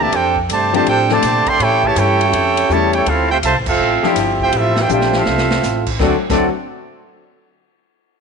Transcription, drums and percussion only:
0.12 kick, ride
0.36 kick
0.49 kick, hi-hat pedal, ride
0.74 ride
0.86 kick, ride
1.09 snare
1.22 kick, snare, hi-hat pedal, ride
1.46 kick, ride
1.60 kick, ride
1.83 kick
1.96 kick, hi-hat pedal, ride
2.21 ride
2.33 kick, ride
2.57 ride
2.69 kick, hi-hat pedal
2.93 ride
3.06 kick, ride
3.43 kick, hi-hat pedal, ride
3.66 kick, crash
4.03 snare
4.16 kick, snare, hi-hat pedal, ride
4.40 kick
4.53 kick, ride
4.76 snare
4.89 hi-hat pedal
5.01 snare
5.13 snare
5.26 snare
5.38 snare
5.51 snare
5.63 snare, hi-hat pedal
5.86 kick, crash
5.99 kick, snare
6.30 kick, snare, crash

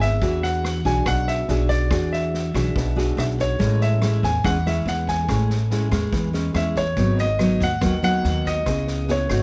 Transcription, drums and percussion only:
0.00 kick, snare
0.21 kick, snare
0.43 snare
0.64 cross-stick, snare
0.85 kick, snare
1.06 kick, cross-stick, snare
1.27 snare
1.48 snare
1.69 kick, snare
1.91 kick, cross-stick, snare
2.13 snare
2.34 snare
2.54 kick, cross-stick, snare
2.76 kick, snare
2.98 snare
3.18 cross-stick, snare
3.39 kick, snare
3.60 kick, snare
3.81 snare
4.02 cross-stick, snare
4.23 kick, snare
4.44 kick, cross-stick, snare
4.66 snare
4.87 snare
5.07 kick, snare
5.29 kick, cross-stick, snare
5.50 snare
5.70 snare
5.91 kick, cross-stick, snare
6.12 kick, snare
6.34 snare
6.54 cross-stick, snare
6.76 kick, snare
6.96 kick, snare
7.18 snare
7.39 cross-stick, snare
7.60 kick, snare
7.81 kick, cross-stick, snare
8.02 snare
8.24 snare
8.45 kick, snare
8.66 kick, cross-stick, snare
8.87 snare
9.08 snare
9.29 kick, cross-stick, snare

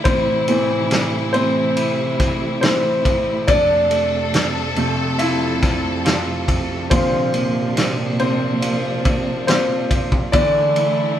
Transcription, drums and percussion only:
0.05 kick, ride
0.48 ride
0.91 snare, ride
1.34 ride
1.77 ride
2.20 kick, snare, ride
2.63 snare, ride
3.05 kick, ride
3.48 kick, ride
3.91 ride
4.34 snare, ride
4.76 ride
5.19 ride
5.62 kick, snare, ride
6.06 snare, ride
6.48 kick, ride
6.91 kick, ride
7.34 ride
7.77 snare, ride
8.19 ride
8.62 ride
9.05 kick, ride
9.48 snare, ride
9.91 kick, ride
10.12 kick
10.33 kick, ride
10.76 ride

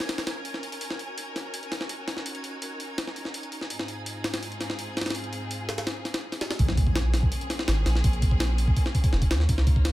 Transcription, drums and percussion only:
0.00 snare, open hi-hat
0.09 snare, open hi-hat
0.18 snare, open hi-hat
0.27 snare, open hi-hat
0.45 open hi-hat
0.54 snare
0.63 open hi-hat
0.72 open hi-hat
0.81 open hi-hat
0.91 snare
0.99 open hi-hat
1.18 open hi-hat
1.36 snare, open hi-hat
1.54 open hi-hat
1.63 closed hi-hat
1.72 snare, open hi-hat
1.81 snare
1.89 open hi-hat
2.08 snare, open hi-hat
2.17 snare
2.26 open hi-hat
2.35 closed hi-hat
2.44 open hi-hat
2.62 open hi-hat
2.80 open hi-hat
2.98 snare, open hi-hat
3.07 snare
3.16 open hi-hat
3.25 snare
3.34 open hi-hat
3.43 closed hi-hat
3.52 open hi-hat
3.61 snare
3.70 open hi-hat
3.79 snare
3.88 open hi-hat
4.06 open hi-hat
4.24 snare, open hi-hat
4.34 snare, open hi-hat
4.43 open hi-hat
4.52 closed hi-hat
4.61 snare, open hi-hat
4.70 snare
4.79 open hi-hat
4.97 snare, open hi-hat
5.01 snare, open hi-hat
5.06 snare, open hi-hat
5.10 snare, open hi-hat
5.15 open hi-hat
5.24 closed hi-hat
5.33 open hi-hat
5.51 open hi-hat
5.69 snare, open hi-hat
5.78 snare, open hi-hat
5.87 snare, open hi-hat
6.05 snare, open hi-hat
6.14 snare, open hi-hat
6.32 snare, open hi-hat
6.41 snare, open hi-hat
6.50 snare, open hi-hat
6.59 kick, open hi-hat
6.69 snare
6.77 kick, open hi-hat
6.87 kick
6.96 snare, open hi-hat
7.14 snare, open hi-hat
7.23 kick
7.32 open hi-hat
7.41 closed hi-hat
7.50 snare, open hi-hat
7.59 snare
7.68 snare, open hi-hat
7.86 snare, open hi-hat
7.95 snare
8.04 kick, open hi-hat
8.13 closed hi-hat
8.22 kick, open hi-hat
8.31 kick
8.40 snare, open hi-hat
8.58 open hi-hat
8.68 kick
8.77 kick, open hi-hat
8.86 snare
8.95 kick, open hi-hat
9.04 kick, open hi-hat
9.13 snare
9.22 kick, open hi-hat
9.31 snare, open hi-hat
9.40 snare
9.49 kick, open hi-hat
9.58 snare
9.67 kick, open hi-hat
9.76 kick
9.85 snare, open hi-hat

